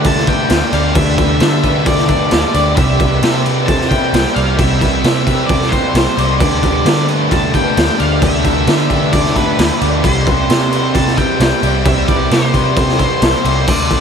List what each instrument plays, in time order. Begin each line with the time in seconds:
Already playing: overdriven electric guitar D3 G3 A3 D4 G4, picked electric bass D3
0.04 overdriven electric guitar D3 D4, clean electric guitar A4, lead electric guitar A5, kick, crash
0.16 snare
0.27 overdriven electric guitar A3 G4, clean electric guitar B4, lead electric guitar G5, kick, crash
0.50 picked electric bass D2, overdriven electric guitar G3 A3, clean electric guitar C5, snare, crash
0.72 picked electric bass D2, overdriven electric guitar D3 G3 A3 D4, clean electric guitar D5, lead electric guitar F5, crash
0.95 picked electric bass D2, overdriven electric guitar D3 G3 A3 D4, clean electric guitar G4, lead electric guitar E5, kick, crash
1.18 clean electric guitar B4, kick, crash
1.40 picked electric bass D3, overdriven electric guitar G3 D4, clean electric guitar C5, snare, crash
1.63 overdriven electric guitar A3 G4, clean electric guitar B4, kick, crash
1.86 overdriven electric guitar D3 D4, clean electric guitar A4, lead electric guitar D5, kick, crash
1.98 snare
2.08 overdriven electric guitar A3 G4, clean electric guitar B4, lead electric guitar D5, kick, crash
2.31 picked electric bass D2, overdriven electric guitar G3 A3, clean electric guitar C5, snare, crash
2.54 picked electric bass D2, overdriven electric guitar D3 G3 A3 D4, clean electric guitar D5, crash
2.76 picked electric bass C2, overdriven electric guitar C3 G3 C4 E4, clean electric guitar G4, lead electric guitar E5, kick, crash
3.00 clean electric guitar B4, kick, crash
3.23 picked electric bass C3, overdriven electric guitar G3 C4, clean electric guitar C5, snare, crash
3.45 overdriven electric guitar C4 G4, clean electric guitar B4, crash
3.66 overdriven electric guitar C3 C4, clean electric guitar A4, lead electric guitar A5, kick, crash
3.81 snare
3.89 overdriven electric guitar C4 G4, clean electric guitar B4, lead electric guitar G5, kick, crash
4.13 picked electric bass C2, overdriven electric guitar G3, clean electric guitar C5, snare, crash
4.34 picked electric bass C2, overdriven electric guitar C3 G3 C4 E4, clean electric guitar D5, lead electric guitar F5, crash
4.57 picked electric bass C2, overdriven electric guitar C3 G3 C4 E4, clean electric guitar G4, lead electric guitar E5, kick, crash
4.81 clean electric guitar B4, kick, crash
5.03 picked electric bass C3, overdriven electric guitar G3 C4, clean electric guitar C5, snare, crash
5.26 overdriven electric guitar C4 G4, clean electric guitar B4, kick, crash
5.46 overdriven electric guitar C3 C4, clean electric guitar A4, lead electric guitar D5, kick, crash
5.62 snare
5.69 overdriven electric guitar C4 G4, clean electric guitar B4, lead electric guitar C5, kick, crash
5.94 picked electric bass C2, overdriven electric guitar G3, clean electric guitar C5, snare, crash
6.17 picked electric bass C2, overdriven electric guitar C3 G3 C4 E4, clean electric guitar D5, crash
6.39 picked electric bass D2, overdriven electric guitar D3 G3 A3 D4, clean electric guitar G4, lead electric guitar D5, kick, crash
6.63 clean electric guitar B4, kick, crash
6.85 picked electric bass D3, overdriven electric guitar G3 D4, clean electric guitar C5, snare, crash
7.08 overdriven electric guitar A3 G4, clean electric guitar B4, crash
7.31 overdriven electric guitar D3 D4, clean electric guitar A4, lead electric guitar A5, kick, crash
7.53 overdriven electric guitar A3 G4, clean electric guitar B4, lead electric guitar G5, kick, crash
7.76 picked electric bass D2, overdriven electric guitar G3 A3, clean electric guitar C5, snare, crash
7.99 picked electric bass D2, overdriven electric guitar D3 G3 A3 D4, clean electric guitar D5, lead electric guitar F5, crash
8.21 picked electric bass D2, overdriven electric guitar D3 G3 A3 D4, clean electric guitar G4, lead electric guitar E5, kick, crash
8.44 clean electric guitar B4, kick, crash
8.67 picked electric bass D3, overdriven electric guitar G3 D4, clean electric guitar C5, snare, crash
8.90 overdriven electric guitar A3 G4, clean electric guitar B4, kick, crash
9.12 overdriven electric guitar D3 D4, clean electric guitar A4, lead electric guitar D5, kick, crash
9.25 snare
9.35 overdriven electric guitar A3 G4, clean electric guitar B4, lead electric guitar B4, kick, crash
9.57 picked electric bass D2, overdriven electric guitar G3 A3, clean electric guitar C5, snare, crash
9.80 picked electric bass D2, overdriven electric guitar D3 G3 A3 D4, clean electric guitar D5, crash
10.03 picked electric bass C2, overdriven electric guitar C3 G3 C4 E4, clean electric guitar G4, lead electric guitar C5, kick, crash
10.26 clean electric guitar B4, kick, crash
10.48 picked electric bass C3, overdriven electric guitar G3 C4, clean electric guitar C5, snare, crash
10.72 overdriven electric guitar C4 G4, clean electric guitar B4, crash
10.94 overdriven electric guitar C3 C4, clean electric guitar A4, lead electric guitar A5, kick, crash
11.07 snare
11.16 overdriven electric guitar C4 G4, clean electric guitar B4, lead electric guitar G5, kick, crash
11.40 picked electric bass C2, overdriven electric guitar G3, clean electric guitar C5, snare, crash
11.62 picked electric bass C2, overdriven electric guitar C3 G3 C4 E4, clean electric guitar D5, crash
11.85 picked electric bass C2, overdriven electric guitar C3 G3 C4 E4, clean electric guitar G4, lead electric guitar E5, kick, crash
12.08 clean electric guitar B4, lead electric guitar D5, kick, crash
12.31 picked electric bass C3, overdriven electric guitar G3 C4, clean electric guitar C5, lead electric guitar C5, snare, crash
12.53 overdriven electric guitar C4 G4, clean electric guitar B4, kick, crash
12.76 overdriven electric guitar C3 C4, clean electric guitar A4, kick, crash
12.89 snare
12.99 overdriven electric guitar C4 G4, clean electric guitar B4, lead electric guitar C5, kick, crash
13.22 picked electric bass C2, overdriven electric guitar G3, clean electric guitar C5, snare, crash
13.44 picked electric bass C2, overdriven electric guitar C3 G3 C4 E4, lead electric guitar C5, clean electric guitar D5, crash
13.67 picked electric bass D2, overdriven electric guitar D3 G3 A3 D4, lead electric guitar D5, kick, crash
13.91 kick, crash